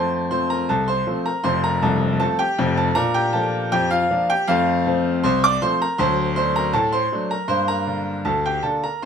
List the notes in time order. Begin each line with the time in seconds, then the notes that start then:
Already playing: F2 A3 C5 A5 C6
0.31 F3 A3 C4 C5 C6
0.50 A#4 A#5
0.69 C2 A4 A5
0.88 C5 C6
1.07 F3 A3 C4
1.26 A#4 A#5
1.44 F1 F2 C5 C6
1.64 A#4 A#5
1.82 C1 C2 A4 A5
2.20 F3 A3 C4 A4 A5
2.39 G4 G5
2.59 F1 F2
2.77 A4 A5
2.95 A#2 D4 A#4 A#5
3.14 G4 G5
3.33 F3 A#3 D4 A4 A5
3.72 F2 G4 G5
3.91 F4 F5
4.10 F3 A#3 D4
4.30 G4 G5
4.48 F2 A3 F4 C5 F5
4.86 F3 A3 C4
5.24 C2 C5 C6
5.44 D5 D6
5.62 F3 A3 C4 C5 C6
5.82 A#4 A#5
5.98 D2 F#3 C5 A5 C6
6.36 F#3 A3 D4 C5 C6
6.56 A#4 A#5
6.73 A2 A4 A5
6.92 C5 C6
7.12 F#3 A3 D4
7.31 A#4 A#5
7.48 G2 A#3 C5 C6
7.68 A#4 A#5
7.87 D3 A#3 D4
8.25 D2 A4 A5
8.46 G4 G5
8.63 D3 A#3 D4 A4 A5
8.84 A#4 A#5